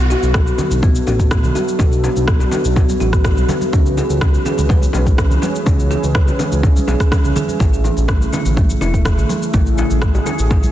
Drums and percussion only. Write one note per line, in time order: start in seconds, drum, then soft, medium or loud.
0.11 low bongo medium
0.11 cabasa soft
0.23 muted conga soft
0.23 cabasa soft
0.34 kick loud
0.34 cross-stick loud
0.34 low bongo medium
0.34 high conga medium
0.34 cabasa soft
0.47 cabasa soft
0.58 low bongo medium
0.58 muted conga soft
0.58 low conga medium
0.58 cabasa medium
0.71 low conga medium
0.71 cabasa medium
0.83 kick loud
0.83 low bongo medium
0.83 high conga medium
0.83 cabasa medium
0.95 muted conga soft
0.95 cabasa medium
1.07 low bongo medium
1.07 cabasa medium
1.20 kick medium
1.20 cabasa soft
1.31 kick loud
1.31 cross-stick loud
1.31 low bongo medium
1.31 cabasa medium
1.44 muted conga soft
1.44 low conga medium
1.44 cabasa medium
1.55 low bongo medium
1.55 high conga medium
1.55 cabasa medium
1.68 cabasa soft
1.79 kick loud
1.79 low bongo medium
1.79 muted conga medium
1.79 high conga medium
1.79 cabasa medium
1.92 cabasa medium
2.04 low bongo medium
2.04 cabasa medium
2.16 muted conga soft
2.16 cabasa medium
2.27 kick loud
2.27 cross-stick loud
2.27 low bongo medium
2.27 high conga medium
2.27 cabasa medium
2.40 high bongo medium
2.40 cabasa medium
2.51 low bongo medium
2.51 muted conga medium
2.51 low conga medium
2.51 cabasa medium
2.65 cabasa medium
2.76 kick loud
2.76 low bongo loud
2.76 cabasa medium
2.89 muted conga soft
2.89 high conga medium
2.89 cabasa medium
3.00 low bongo medium
3.00 cabasa medium
3.13 kick medium
3.13 cross-stick medium
3.13 cabasa medium
3.24 kick loud
3.24 cross-stick loud
3.24 low bongo medium
3.24 cabasa medium
3.37 muted conga soft
3.37 cabasa medium
3.48 low bongo medium
3.48 high conga medium
3.48 low conga loud
3.48 cabasa medium
3.61 high conga medium
3.61 cabasa medium
3.73 kick loud
3.73 low bongo medium
3.73 muted conga soft
3.73 high conga medium
3.73 cabasa medium
3.86 cabasa medium
3.98 low bongo medium
3.98 cabasa medium
4.10 muted conga soft
4.10 cabasa medium
4.21 kick loud
4.21 cross-stick loud
4.21 low bongo medium
4.21 high conga medium
4.21 cabasa medium
4.34 cabasa medium
4.45 low bongo medium
4.45 muted conga soft
4.45 low conga medium
4.45 cabasa medium
4.58 low conga medium
4.58 cabasa medium
4.69 kick loud
4.69 low bongo medium
4.69 high conga medium
4.69 cabasa medium
4.82 muted conga soft
4.82 cabasa medium
4.93 low bongo loud
4.93 cabasa medium
5.07 kick medium
5.07 cabasa medium
5.18 kick loud
5.18 cross-stick loud
5.18 low bongo medium
5.18 cabasa medium
5.30 muted conga medium
5.30 low conga medium
5.30 cabasa medium
5.42 low bongo medium
5.42 high conga medium
5.42 cabasa medium
5.55 cabasa medium
5.66 kick loud
5.66 low bongo medium
5.66 muted conga soft
5.66 high conga medium
5.66 cabasa medium
5.79 cabasa medium
5.91 low bongo medium
5.91 cabasa medium
6.03 muted conga soft
6.03 cabasa medium
6.15 kick loud
6.15 cross-stick loud
6.15 low bongo medium
6.15 high conga medium
6.15 cabasa medium
6.28 high bongo medium
6.28 cabasa medium
6.39 low bongo medium
6.39 muted conga soft
6.39 low conga medium
6.39 cabasa medium
6.52 cabasa medium
6.63 kick loud
6.63 low bongo medium
6.63 cabasa medium
6.76 muted conga soft
6.76 high conga medium
6.76 cabasa medium
6.88 low bongo medium
6.88 cabasa medium
7.00 kick medium
7.00 cross-stick medium
7.00 cabasa medium
7.12 kick loud
7.12 cross-stick loud
7.12 low bongo loud
7.12 cabasa medium
7.24 muted conga soft
7.24 cabasa medium
7.36 low bongo medium
7.36 high conga medium
7.36 low conga loud
7.36 cabasa medium
7.48 high conga medium
7.48 cabasa medium
7.59 kick loud
7.59 low bongo medium
7.59 muted conga medium
7.59 high conga medium
7.59 cabasa medium
7.73 cabasa soft
7.85 low bongo medium
7.85 cabasa soft
7.97 muted conga soft
7.97 cabasa soft
8.08 kick loud
8.08 cross-stick medium
8.08 low bongo medium
8.08 high conga medium
8.08 cabasa medium
8.22 cabasa medium
8.32 low bongo loud
8.32 muted conga soft
8.32 low conga medium
8.32 cabasa medium
8.45 low conga medium
8.45 cabasa medium
8.57 kick loud
8.57 low bongo medium
8.57 high conga medium
8.57 cabasa soft
8.69 muted conga soft
8.69 cabasa medium
8.81 low bongo medium
8.81 cabasa soft
8.94 kick medium
8.94 cabasa medium
9.05 kick loud
9.05 cross-stick loud
9.05 low bongo medium
9.05 cabasa medium
9.18 muted conga soft
9.18 low conga medium
9.18 cabasa soft
9.29 low bongo medium
9.29 high conga medium
9.29 cabasa medium
9.42 cabasa medium
9.54 kick loud
9.54 low bongo medium
9.54 muted conga medium
9.54 high conga medium
9.54 cabasa medium
9.66 cabasa soft
9.78 low bongo medium
9.78 cabasa soft
9.90 muted conga soft
9.90 cabasa soft
10.02 kick loud
10.02 cross-stick medium
10.02 low bongo medium
10.02 high conga medium
10.02 cabasa soft
10.15 high bongo medium
10.15 cabasa soft
10.26 low bongo medium
10.26 muted conga medium
10.26 low conga medium
10.26 cabasa medium
10.39 cabasa medium
10.50 kick loud
10.50 low bongo medium
10.50 cabasa soft
10.63 muted conga soft
10.63 high conga medium
10.63 cabasa medium